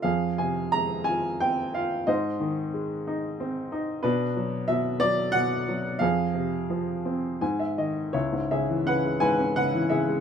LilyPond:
<<
  \new Staff \with { instrumentName = "Grand piano" } { \time 3/4 \key f \minor \tempo 4 = 88 << { f''8 aes''8 bes''8 aes''8 g''8 f''8 | ees''2~ ees''8 r8 | b'4 e''8 d''8 fis''4 | f''2 aes''16 e''16 ees''8 |
\key cis \minor cis''8 e''8 fis''8 gis''8 fis''8 e''8 | } \\ { aes'4. r4. | c''2~ c''8 r8 | d'4. r4. | aes'2 r4 |
e'8 gis'8 b'8 b'8 b'8 gis'8 | } >> }
  \new Staff \with { instrumentName = "Grand piano" } { \clef bass \time 3/4 \key f \minor f,8 c8 aes8 f'8 c'8 f'8 | aes,8 ees8 aes8 ees'8 c'8 ees'8 | b,8 fis8 b,8 fis8 b,8 fis8 | f,8 c8 f8 c'8 aes,8 ees8 |
\key cis \minor cis,16 gis,16 cis16 e16 cis16 gis16 gis,16 cis'16 cis16 e16 cis16 gis16 | }
>>